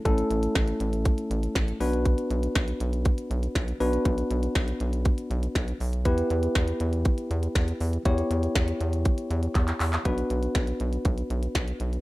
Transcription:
<<
  \new Staff \with { instrumentName = "Tine electric piano" } { \time 4/4 \key b \minor \tempo 4 = 120 <a cis' e' a'>2.~ <a cis' e' a'>8 <b d' fis' b'>8~ | <b d' fis' b'>2.~ <b d' fis' b'>8 <b d' fis' b'>8~ | <b d' fis' b'>2.~ <b d' fis' b'>8 r8 | <b e' g' b'>1 |
<b e' g' cis''>1 | <b d' fis' b'>1 | }
  \new Staff \with { instrumentName = "Analog synth bass" } { \clef bass \time 4/4 \key b \minor a,,8 a,,8 a,,8 a,,8. r16 a,,8 a,,8 b,,8~ | b,,8 b,,8 b,,8 b,,8. r16 b,,8 b,,8 b,,8 | b,,8 b,,8 b,,8 b,,8. r16 b,,8 b,,8 b,,8 | e,8 e,8 e,8 e,8. r16 e,8 e,8 e,8 |
e,8 e,8 e,8 e,8. r16 e,8 e,8 e,8 | b,,8 b,,8 b,,8 b,,8 b,,8 b,,8 b,,8 b,,8 | }
  \new DrumStaff \with { instrumentName = "Drums" } \drummode { \time 4/4 <hh bd>16 hh16 hh16 hh16 <hh bd sn>16 hh16 hh16 hh16 <hh bd>16 hh16 hh16 hh16 <hh bd sn>16 hh16 hho16 hh16 | <hh bd>16 hh16 hh16 hh16 <hh bd sn>16 hh16 hh16 hh16 <hh bd>16 hh16 hh16 hh16 <hh bd sn>16 hh16 hho16 hh16 | <hh bd>16 hh16 hh16 hh16 <hh bd sn>16 hh16 hh16 hh16 <hh bd>16 hh16 hh16 hh16 <hh bd sn>16 hh16 hho16 hh16 | <hh bd>16 hh16 hh16 hh16 <hh bd sn>16 hh16 hh16 hh16 <hh bd>16 hh16 hh16 hh16 <hh bd sn>16 hh16 hho16 hh16 |
<hh bd>16 hh16 hh16 hh16 <hh bd sn>16 hh16 hh16 hh16 <hh bd>16 hh16 hh16 hh16 <hc hh bd>16 <hc hh>16 <hc hho>16 <hc hh>16 | <hh bd>16 hh16 hh16 hh16 <hh bd sn>16 hh16 hh16 hh16 <hh bd>16 hh16 hh16 hh16 <hh bd sn>16 hh16 hh16 hh16 | }
>>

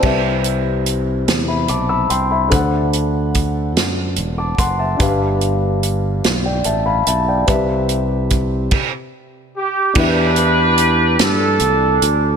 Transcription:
<<
  \new Staff \with { instrumentName = "Grand piano" } { \time 6/8 \key c \major \tempo 4. = 48 << { <d'' g''>16 r4. <e'' b''>16 <a'' d'''>16 <b'' e'''>16 <g'' c'''>16 <e'' b''>16~ | <e'' b''>16 r2 <a'' d'''>16 <fis'' c'''>16 <e'' a''>16~ | <e'' a''>16 r4. <d'' g''>16 <e'' a''>16 <f'' b''>16 <e'' a''>16 <d'' g''>16~ | <d'' g''>16 r2 r8. |
r2. | } \\ { <c' g' b' e''>2. | <d' a' c'' fis''>2. | <d' g' b' f''>2. | <c' g' b' e''>4. r4. |
<d' g' b' e''>2. | } >> }
  \new Staff \with { instrumentName = "Grand piano" } { \clef bass \time 6/8 \key c \major c4. r4. | d4. r4. | g,4. r4. | c4. r4. |
e4. r4. | }
  \new Staff \with { instrumentName = "Horn section" } { \time 6/8 \key c \major << { r2. | r2. | r2. | r2 r8 g'8 |
b'4. a'4 r8 | } \\ { r2. | r2. | r2. | r2. |
<d' g'>4. d'4. | } >> }
  \new Staff \with { instrumentName = "Fingered electric bass" } { \clef bass \time 6/8 \key c \major c,4. e,8 b,,8 c,8 | d,4. fis,8 e,,8 fis,,8 | g,,4. b,,8 a,,8 b,,8 | c,4. r4. |
e,4. g,8 c,8 d,8 | }
  \new DrumStaff \with { instrumentName = "Drums" } \drummode { \time 6/8 <cymc bd>8 hh8 hh8 <hh sn>8 hh8 hh8 | <hh bd>8 hh8 <hh bd>8 <hh sn>8 hh8 <hh bd>8 | <hh bd>8 hh8 hh8 <hh sn>8 hh8 hh8 | <hh bd>8 hh8 <hh bd>8 <cymc bd>4. |
<cymc bd>8 hh8 hh8 <hh sn>8 hh8 hh8 | }
>>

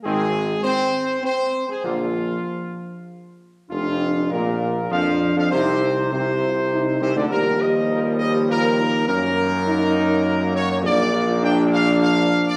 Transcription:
<<
  \new Staff \with { instrumentName = "Trumpet section" } { \time 3/4 \key bes \mixolydian \tempo 4 = 101 aes'4 c''4 c''8. aes'16 | f'2~ f'8 r8 | f'4 bes'4 f''8. f''16 | c''4 c''4. c''16 d''16 |
bes'8 ees''4 ees''8 bes'4 | bes'2~ bes'8 des''16 des''16 | d''4 g''8 f''8 f''8. d''16 | }
  \new Staff \with { instrumentName = "French horn section" } { \time 3/4 \key bes \mixolydian aes4 c'4 c'8. aes16 | f2~ f8 r8 | d'4 f'4 d'4 | ees'4 g'8 f'8 ees'4 |
g'4 bes'8 g'8 f'8 ees'8 | des'4 ees'2 | d'8 f'8 d'2 | }
  \new Staff \with { instrumentName = "Trombone section" } { \clef bass \time 3/4 \key bes \mixolydian << { c'8 r2 r8 | bes8 r2 r8 | f,4 bes,4 f8. f16 | c4 c4. c16 d16 |
g2. | bes2.~ | bes2. | } \\ { ees8 r2 r8 | d8 r2 r8 | r2. | r2. |
f2. | ges2. | f2. | } >> }
  \new Staff \with { instrumentName = "Tuba" } { \clef bass \time 3/4 \key bes \mixolydian aes,,4 r2 | bes,,4 r2 | f,,4 bes,,4 f,8. f,16 | c,4 c,4. c,16 d,16 |
ees,2. | ges,2. | bes,,2. | }
>>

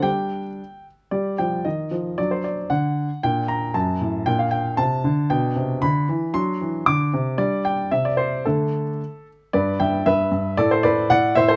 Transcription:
<<
  \new Staff \with { instrumentName = "Grand piano" } { \time 2/4 \key c \lydian \tempo 4 = 115 << { g''4. r8 | \key g \minor d''8 g''8 ees''4 | d''16 c''16 d''8 fis''4 | g''8 bes''8 a''4 |
g''16 f''16 g''8 a''4 | \key g \major g''4 b''4 | c'''4 d'''8 r8 | d''8 g''8 e''16 d''16 c''8 |
a'4. r8 | <b' d''>8 <e'' g''>8 <b' e''>4 | <a' d''>16 <a' c''>16 <b' d''>8 <d'' fis''>8 <c'' e''>16 <a' c''>16 | } \\ { r2 | g'4 r4 | d'2 | d'4 r4 |
d'2 | d'2 | d'2 | d'4 r4 |
r2 | r2 | r2 | } >> }
  \new Staff \with { instrumentName = "Grand piano" } { \clef bass \time 2/4 \key c \lydian <g d' g'>4 r4 | \key g \minor g8 f8 ees8 f8 | fis4 d4 | bes,4 fis,8 a,8 |
bes,4 c8 d8 | \key g \major b,8 c8 d8 e8 | fis8 e8 d8 c8 | g4 c4 |
<d a d'>4 r4 | g,8 g,8 g,8 g,8 | a,8 a,8 a,8 a,8 | }
>>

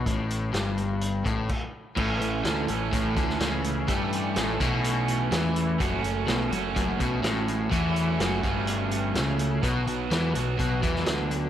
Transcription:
<<
  \new Staff \with { instrumentName = "Overdriven electric guitar" } { \time 4/4 \key a \mixolydian \tempo 4 = 125 r1 | <e a cis'>4. <e a cis'>2~ <e a cis'>8 | <e a cis'>4. <e a cis'>2~ <e a cis'>8 | <a cis' fis'>4. <a cis' fis'>2~ <a cis' fis'>8 |
<a cis' fis'>4. <a cis' fis'>2~ <a cis' fis'>8 | <fis b fis'>4. <fis b fis'>2~ <fis b fis'>8 | }
  \new Staff \with { instrumentName = "Overdriven electric guitar" } { \clef bass \time 4/4 \key a \mixolydian a,4 g,4. a,8 r4 | a,8 a,8 d8 a,8 a,8 d8 cis4 | g4 a,8 b,4. e4 | fis,8 fis,8 b,8 fis,8 fis,8 b,8 a,4 |
e4 fis,8 g,4. cis4 | b,8 b,8 e8 b,8 b,8 e8 d4 | }
  \new Staff \with { instrumentName = "Picked electric bass" } { \clef bass \time 4/4 \key a \mixolydian a,,4 g,,4. a,,8 r4 | a,,8 a,,8 d,8 a,,8 a,,8 d,8 cis,4 | g,4 a,,8 b,,4. e,4 | fis,,8 fis,,8 b,,8 fis,,8 fis,,8 b,,8 a,,4 |
e,4 fis,,8 g,,4. cis,4 | b,,8 b,,8 e,8 b,,8 b,,8 e,8 d,4 | }
  \new DrumStaff \with { instrumentName = "Drums" } \drummode { \time 4/4 <hh bd>8 hh8 <hh sn>8 hh8 hh8 <hh bd>8 <cymc bd>4 | <cymc bd>8 hh8 <hh sn>8 hh8 <hh bd>8 <hh bd>16 sn16 <hh sn>8 hh8 | <hh bd>8 hh8 <hh sn>8 <hh bd>8 hh8 hh8 <hh sn>8 hh8 | <hh bd>8 hh8 <hh sn>8 hh8 <hh bd>8 <hh bd>8 <hh sn>8 hh8 |
<hh bd>8 hh8 <hh sn>8 <hh bd>8 hh8 hh8 <hh sn>8 hh8 | <hh bd>8 hh8 <hh sn>8 hh8 <hh bd>8 <hh bd>16 sn16 <hh sn>8 hh8 | }
>>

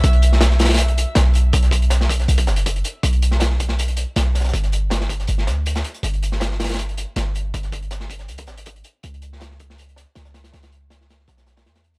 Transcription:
<<
  \new Staff \with { instrumentName = "808-style bass" } { \clef bass \time 4/4 \key b \minor \tempo 4 = 160 b,,2~ b,,8. r16 b,,4 | b,,2 b,,8 fis,,4 r8 | b,,2~ b,,8. r16 b,,4 | g,,2 g,,8 d,4 r8 |
g,,2~ g,,8. r16 g,,4 | g,,2 cis,8 gis,,4 r8 | cis,2~ cis,8. r16 cis,4 | cis,2 b,,4 e,8. b,,16 | }
  \new DrumStaff \with { instrumentName = "Drums" } \drummode { \time 4/4 <hh bd>16 hh16 hh16 sn16 <hh sn>16 sn16 <hh sn>32 <hh sn>32 <hh sn>32 <hh sn>32 hh16 hh16 hh8 <hh sn>8 hh8 | <hh bd>16 <hh sn>16 <hh bd>16 hh16 <hh sn>16 sn16 <hh bd>16 <hh sn>16 hh16 <hh bd>16 <hh sn>16 hh16 <hh bd>16 hh16 hh8 | <hh bd>16 hh16 hh16 sn16 <hh sn>16 sn16 <hh bd>16 sn16 hh16 hh16 hh8 <hh sn>8 <hh sn>32 <hh sn>32 <hh sn>32 <hh sn>32 | <hh bd>16 <hh sn>16 hh8 <hh sn>16 sn16 <hh bd>16 <hh sn>16 hh16 sn16 <hh sn>8 hh16 <hh sn>16 hh16 hh16 |
<hh bd>16 hh16 hh16 sn16 <hh sn>16 sn16 <hh sn>32 <hh sn>32 <hh sn>32 <hh sn>32 hh16 hh16 hh8 <hh sn>8 hh8 | <hh bd>16 <hh sn>16 <hh bd>16 hh16 <hh sn>16 sn16 <hh bd>16 <hh sn>16 hh16 <hh bd>16 <hh sn>16 hh16 <hh bd>16 hh16 hh8 | <hh bd>16 hh16 hh16 sn16 <hh sn>16 sn16 <hh bd>16 sn16 hh16 hh16 <hh sn>8 <hh sn>16 <hh sn>16 <hh sn>16 <hh sn>16 | <hh sn>16 <hh sn>16 hh8 <hh sn>16 sn16 <hh sn>16 sn16 <hh bd sn>16 <hh sn>16 <hh sn>16 <hh sn>16 <hh sn>16 <hh sn>16 hh16 hh16 | }
>>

